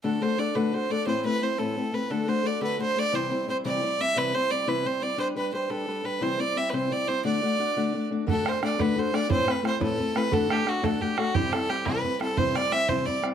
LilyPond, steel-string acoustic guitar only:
\new Staff \with { instrumentName = "Steel-string acoustic guitar" } { \time 6/8 \key d \mixolydian \tempo 4. = 117 <d a d' fis' a'>8 <a d' fis' a'>8 <a d' fis' a'>8 <d a d' fis' a'>8 <a d' fis' a'>8 <a d' fis' a'>8 | <a, e a c' e' b'>8 <a c' e' b'>8 <a c' e' b'>8 <a, e a c' e' b'>8 <a c' e' b'>8 <a c' e' b'>8 | <d a d' fis' a'>8 <a d' fis' a'>8 <a d' fis' a'>8 <d a d' fis' a'>8 <a d' fis' a'>8 <a d' fis' a'>8 | <c e g c' e' c''>8 <g c' e' c''>8 <g c' e' c''>8 <c e g c' e' c''>8 <g c' e' c''>8 <g c' e' c''>8 |
<c e g c' e' c''>8 <g c' e'>8 <g c' e' c''>8 <c e g c' e' c''>8 <g c' e'>8 <g c' e' c''>8 | <g d' g' b'>8 <g d' g' b'>8 <g d' g' b'>8 <g d' g' b'>8 <g d' g' b'>8 <g d' g' b'>8 | <c e g c' e' c''>8 <g c' e' c''>8 <g c' e' c''>8 <c e g c' e' c''>8 <g c' e' c''>8 <g c' e' c''>8 | <d a d' fis' d''>8 <a d' fis' d''>8 <a d' fis' d''>8 <d a d' fis' d''>8 <a d' fis' d''>8 <a d' fis' d''>8 |
<d a d' fis' a'>8 <a d'>8 <a d' fis' a'>8 <d a d' fis' a'>8 <a d' fis' a'>8 <a d' fis' a'>8 | <a, e a c' e' b'>8 <a c' e' b'>8 <a c' e' b'>8 <a, e a c' e' b'>8 <a c' e' b'>8 <a c' e' b'>8 | <d a d' fis' a'>8 <a d' fis' a'>8 <a d' fis' a'>8 <d a d' fis' a'>8 <a d' fis' a'>8 <a d' fis' a'>8 | <c e g c' e' c''>8 <g c' e' c''>8 <g c' e' c''>8 <c e g c' e' c''>8 <g c' e' c''>8 <g c' e' c''>8 |
<c e g c' e' c''>8 <g c' e' c''>8 <g c' e' c''>8 <c e g c' e' c''>8 <g c' e' c''>8 <g c' e' c''>8 | }